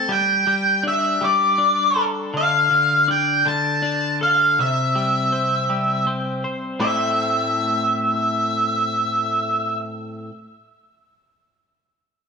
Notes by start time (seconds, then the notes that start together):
Already playing: A4 A5
0.09 G3 G5
0.47 G3
0.83 D4
0.88 E5
1.21 G3 D5
1.58 D4
1.96 A4
2.34 D3 F5
2.70 D3
3.08 D4 G5
3.45 D3 A5
3.82 D4
4.21 A4 F5
4.59 C3 E5
4.95 G3
5.32 C4
5.70 G3
6.07 C4
6.44 C5
6.80 A2 A3 C4 E4 C5 E5